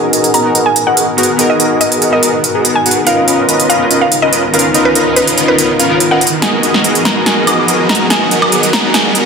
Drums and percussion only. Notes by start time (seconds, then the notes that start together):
0.13 closed hi-hat
0.24 closed hi-hat
0.34 closed hi-hat
0.55 closed hi-hat
0.76 closed hi-hat
0.97 closed hi-hat
1.18 closed hi-hat
1.23 closed hi-hat
1.39 closed hi-hat
1.60 closed hi-hat
1.81 closed hi-hat
1.92 closed hi-hat
2.02 closed hi-hat
2.23 closed hi-hat
2.44 closed hi-hat
2.65 closed hi-hat
2.86 closed hi-hat
2.91 closed hi-hat
3.07 closed hi-hat
3.28 closed hi-hat
3.49 closed hi-hat
3.60 closed hi-hat
3.70 closed hi-hat
3.91 closed hi-hat
4.12 closed hi-hat
4.33 closed hi-hat
4.54 closed hi-hat
4.59 closed hi-hat
4.74 closed hi-hat
4.95 closed hi-hat
5.16 closed hi-hat
5.27 closed hi-hat
5.38 closed hi-hat
5.58 closed hi-hat
5.80 closed hi-hat
6.00 closed hi-hat
6.21 closed hi-hat
6.27 closed hi-hat
6.42 snare, closed hi-hat
6.63 closed hi-hat
6.74 snare
6.84 closed hi-hat
6.95 closed hi-hat
7.05 snare, closed hi-hat
7.26 snare, closed hi-hat
7.47 closed hi-hat, high woodblock
7.68 closed hi-hat
7.89 snare, closed hi-hat
7.95 closed hi-hat
8.10 snare, closed hi-hat
8.31 closed hi-hat
8.42 high woodblock
8.52 closed hi-hat
8.63 closed hi-hat
8.73 snare, closed hi-hat
8.94 snare, closed hi-hat
9.15 closed hi-hat